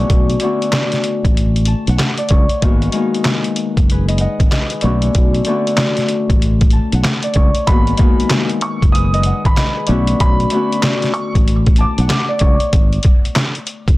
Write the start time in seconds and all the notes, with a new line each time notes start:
Already playing: D3 A3 B3 C#4 F#4 G#4 B4 F#5
0.10 B1, kick, closed hi-hat
0.30 closed hi-hat
0.40 D3 A3 B3 C#4, closed hi-hat
0.44 F#4
0.62 closed hi-hat
0.72 snare, clap, closed hi-hat
0.92 snare, closed hi-hat
1.04 closed hi-hat
1.25 A1, kick, closed hi-hat
1.37 closed hi-hat
1.56 closed hi-hat
1.65 A5, closed hi-hat
1.87 B1 F#5, closed hi-hat
1.99 F#5, snare, clap, closed hi-hat
2.18 D5, closed hi-hat
2.29 C#2 C#5, kick, closed hi-hat
2.49 closed hi-hat
2.62 G#1 D#3 G#3 A#3 B3 F#4, kick, closed hi-hat
2.82 closed hi-hat
2.92 D#3 G#3 A#3 B3 D#4, closed hi-hat
3.14 closed hi-hat
3.24 snare, clap, closed hi-hat
3.44 closed hi-hat
3.56 closed hi-hat
3.77 F#1, kick, closed hi-hat
3.90 G#4 B4, closed hi-hat
4.08 B4 D#5, closed hi-hat
4.18 D#5 F#5, closed hi-hat
4.40 G#1, kick, closed hi-hat
4.52 B4 D#5, snare, clap, closed hi-hat
4.70 G#4 B4, closed hi-hat
4.81 B1 D3 A3 B3 C#4 F#4, closed hi-hat
5.02 closed hi-hat
5.15 B1, kick, closed hi-hat
5.34 closed hi-hat
5.45 D3 A3 B3 C#4, closed hi-hat
5.49 F#4
5.67 closed hi-hat
5.77 snare, clap, closed hi-hat
5.97 snare, closed hi-hat
6.09 closed hi-hat
6.30 A1, kick, closed hi-hat
6.42 closed hi-hat
6.61 kick, closed hi-hat
6.71 A5, closed hi-hat
6.92 B1 F#5, closed hi-hat
7.04 F#5, snare, clap, closed hi-hat
7.23 D5, closed hi-hat
7.34 C#2 C#5, kick, closed hi-hat
7.55 closed hi-hat
7.67 G#1 D#3 G#3 A#3 B3 F#4 B5, kick, closed hi-hat
7.87 closed hi-hat
7.97 D#3 G#3 A#3 B3 D#4, kick, closed hi-hat
8.20 closed hi-hat
8.30 snare, clap, closed hi-hat
8.49 closed hi-hat
8.61 C#6, closed hi-hat
8.82 F#1, kick, closed hi-hat
8.92 D#6, closed hi-hat
8.97 G#4 B4
9.14 B4 D#5, closed hi-hat
9.23 D#5 F#5, closed hi-hat
9.45 G#1 B5, kick, closed hi-hat
9.57 B4 D#5, snare, clap, closed hi-hat
9.76 G#4 B4
9.87 B1 D3 A3 B3 C#4 F#4, closed hi-hat
10.07 closed hi-hat
10.20 B1 B5, kick, closed hi-hat
10.40 closed hi-hat
10.50 D3 A3 B3 C#4, closed hi-hat
10.54 F#4
10.72 closed hi-hat
10.82 snare, clap, closed hi-hat
11.02 snare, closed hi-hat
11.14 C#6, closed hi-hat
11.35 A1, kick, closed hi-hat
11.48 closed hi-hat
11.66 kick, closed hi-hat
11.76 A5, closed hi-hat
11.81 D6
11.98 B1 F#5, closed hi-hat
12.10 F#5, snare, clap, closed hi-hat
12.29 D5
12.39 C#2 C#5, kick, closed hi-hat
12.60 closed hi-hat
12.73 G#1, kick, closed hi-hat
12.93 closed hi-hat
13.03 kick, closed hi-hat
13.25 closed hi-hat
13.35 snare, clap, closed hi-hat
13.55 closed hi-hat
13.67 closed hi-hat
13.88 F#1, kick, closed hi-hat